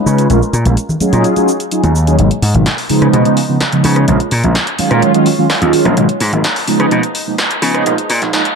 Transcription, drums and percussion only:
0.06 tambourine, cabasa
0.18 closed hi-hat, cabasa
0.30 closed hi-hat, tambourine, high conga, cabasa
0.43 cabasa
0.53 closed hi-hat, cabasa
0.65 closed hi-hat, tambourine, high conga, cabasa
0.77 closed hi-hat, tambourine, cabasa
0.89 low conga, cabasa
1.00 closed hi-hat, tambourine, high conga, cabasa
1.13 closed hi-hat, cabasa
1.24 closed hi-hat, cabasa
1.36 closed hi-hat, high conga, cabasa
1.48 tambourine, cabasa
1.60 closed hi-hat, cabasa
1.72 closed hi-hat, cabasa
1.83 closed hi-hat, high conga, cabasa
1.96 tambourine, cabasa
2.07 closed hi-hat, cabasa
2.19 closed hi-hat
2.31 closed hi-hat
2.42 open hi-hat
2.55 closed hi-hat
2.66 snare, closed hi-hat
2.78 open hi-hat
2.90 open hi-hat
3.02 cross-stick, closed hi-hat
3.13 closed hi-hat
3.25 closed hi-hat
3.37 open hi-hat
3.61 cross-stick, snare, closed hi-hat
3.72 closed hi-hat
3.84 open hi-hat
3.96 cross-stick, closed hi-hat
4.08 closed hi-hat
4.20 closed hi-hat
4.31 open hi-hat
4.44 closed hi-hat
4.55 snare, closed hi-hat
4.67 closed hi-hat
4.79 open hi-hat
4.91 cross-stick, closed hi-hat
5.02 closed hi-hat
5.14 closed hi-hat
5.26 open hi-hat
5.50 cross-stick, snare, open hi-hat
5.62 closed hi-hat
5.73 open hi-hat
5.85 cross-stick, closed hi-hat
5.97 closed hi-hat
6.09 closed hi-hat
6.20 open hi-hat
6.33 closed hi-hat
6.44 snare, closed hi-hat
6.56 open hi-hat
6.68 open hi-hat
6.80 cross-stick, closed hi-hat
6.91 closed hi-hat
7.03 closed hi-hat
7.15 open hi-hat
7.38 cross-stick, snare, closed hi-hat
7.51 closed hi-hat
7.62 open hi-hat
7.75 cross-stick, closed hi-hat
7.86 closed hi-hat
7.98 closed hi-hat
8.10 open hi-hat
8.22 snare, closed hi-hat
8.33 snare, closed hi-hat
8.45 closed hi-hat

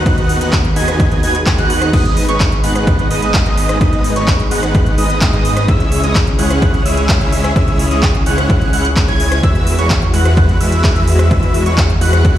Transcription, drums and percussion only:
0.06 kick, closed hi-hat
0.18 closed hi-hat
0.29 open hi-hat
0.41 closed hi-hat
0.53 kick, clap, closed hi-hat
0.64 closed hi-hat
0.76 open hi-hat
0.88 cross-stick, closed hi-hat
1.00 kick, closed hi-hat
1.11 closed hi-hat
1.23 open hi-hat
1.35 closed hi-hat
1.46 kick, clap, closed hi-hat
1.58 closed hi-hat
1.70 open hi-hat
1.82 cross-stick, closed hi-hat
1.93 kick, closed hi-hat, crash
2.05 closed hi-hat
2.17 open hi-hat
2.29 closed hi-hat
2.40 kick, clap, closed hi-hat
2.52 closed hi-hat
2.64 open hi-hat
2.75 cross-stick, closed hi-hat
2.87 kick, closed hi-hat
2.99 closed hi-hat
3.11 open hi-hat
3.22 closed hi-hat
3.34 kick, clap, closed hi-hat
3.46 closed hi-hat
3.57 open hi-hat
3.69 cross-stick, closed hi-hat
3.81 kick, closed hi-hat
3.93 closed hi-hat
4.04 open hi-hat
4.16 closed hi-hat
4.28 kick, clap, closed hi-hat
4.39 closed hi-hat
4.51 open hi-hat
4.63 cross-stick, closed hi-hat
4.75 kick, closed hi-hat
4.86 closed hi-hat
4.98 open hi-hat
5.10 closed hi-hat
5.21 kick, clap, closed hi-hat
5.33 closed hi-hat
5.45 open hi-hat
5.57 cross-stick, closed hi-hat
5.68 kick, closed hi-hat
5.80 closed hi-hat
5.92 open hi-hat
6.04 closed hi-hat
6.15 kick, clap, closed hi-hat
6.27 closed hi-hat
6.39 open hi-hat
6.50 cross-stick, closed hi-hat
6.62 kick, closed hi-hat
6.74 closed hi-hat
6.86 open hi-hat
6.97 closed hi-hat
7.09 kick, clap, closed hi-hat
7.21 closed hi-hat
7.32 open hi-hat
7.44 cross-stick, closed hi-hat
7.56 kick, closed hi-hat
7.68 closed hi-hat
7.79 open hi-hat
7.91 closed hi-hat
8.03 kick, clap, closed hi-hat
8.15 closed hi-hat
8.26 open hi-hat
8.38 cross-stick, closed hi-hat
8.50 kick, closed hi-hat
8.61 closed hi-hat
8.73 open hi-hat
8.85 closed hi-hat
8.96 kick, clap, closed hi-hat
9.08 closed hi-hat
9.20 open hi-hat
9.32 cross-stick, closed hi-hat
9.43 kick, closed hi-hat
9.55 closed hi-hat
9.67 open hi-hat
9.79 closed hi-hat
9.90 kick, clap, closed hi-hat
10.02 closed hi-hat
10.14 open hi-hat
10.25 cross-stick, closed hi-hat
10.37 kick, closed hi-hat
10.49 closed hi-hat
10.61 open hi-hat
10.72 closed hi-hat
10.84 kick, clap, closed hi-hat
10.96 closed hi-hat
11.08 open hi-hat
11.19 cross-stick, closed hi-hat
11.31 kick, closed hi-hat
11.43 closed hi-hat
11.54 open hi-hat
11.66 closed hi-hat
11.78 kick, clap, closed hi-hat
11.90 closed hi-hat
12.01 open hi-hat
12.13 cross-stick, closed hi-hat
12.25 kick, closed hi-hat

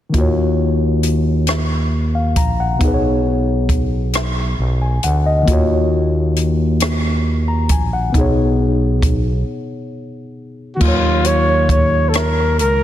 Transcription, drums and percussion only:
0.14 kick, closed hi-hat
1.03 closed hi-hat
1.47 cross-stick, closed hi-hat
2.36 kick, closed hi-hat
2.81 kick, closed hi-hat
3.69 kick, closed hi-hat
4.13 cross-stick, closed hi-hat
5.03 closed hi-hat
5.48 kick, closed hi-hat
6.36 closed hi-hat
6.80 cross-stick, closed hi-hat
7.69 kick, closed hi-hat
8.14 kick, closed hi-hat
9.02 kick, closed hi-hat
10.81 kick, crash
11.24 closed hi-hat
11.69 kick, closed hi-hat
12.14 cross-stick, closed hi-hat
12.59 closed hi-hat

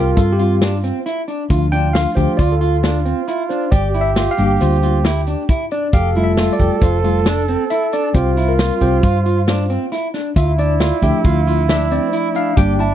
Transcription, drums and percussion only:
0.17 kick, closed hi-hat
0.39 closed hi-hat
0.61 snare, closed hi-hat
0.84 closed hi-hat
1.06 closed hi-hat
1.28 closed hi-hat
1.50 kick, closed hi-hat
1.73 closed hi-hat
1.95 snare, closed hi-hat
2.17 kick, closed hi-hat
2.39 kick, closed hi-hat
2.62 closed hi-hat
2.83 snare, closed hi-hat
3.06 closed hi-hat
3.28 closed hi-hat
3.50 closed hi-hat
3.72 kick, closed hi-hat
3.94 closed hi-hat
4.16 snare, closed hi-hat
4.38 closed hi-hat
4.61 closed hi-hat
4.83 closed hi-hat
5.04 snare, closed hi-hat
5.27 closed hi-hat
5.49 kick, closed hi-hat
5.71 closed hi-hat
5.93 kick, closed hi-hat, shaker
6.15 closed hi-hat
6.37 snare, closed hi-hat, shaker
6.59 kick, closed hi-hat
6.81 kick, closed hi-hat, shaker
7.04 closed hi-hat, shaker
7.26 snare, closed hi-hat
7.48 closed hi-hat, shaker
7.70 closed hi-hat
7.92 closed hi-hat
8.15 kick, closed hi-hat, shaker
8.37 snare, closed hi-hat
8.59 snare, closed hi-hat, shaker
8.81 kick, closed hi-hat
9.03 kick, closed hi-hat, shaker
9.25 closed hi-hat, shaker
9.48 snare, closed hi-hat
9.70 closed hi-hat, shaker
9.92 snare, closed hi-hat
10.14 snare, closed hi-hat
10.36 kick, closed hi-hat, shaker
10.58 closed hi-hat
10.80 snare, closed hi-hat, shaker
11.02 kick, closed hi-hat
11.25 kick, closed hi-hat, shaker
11.47 closed hi-hat, shaker
11.69 snare, closed hi-hat
11.91 closed hi-hat, shaker
12.13 closed hi-hat
12.35 closed hi-hat
12.57 kick, closed hi-hat, shaker
12.79 closed hi-hat

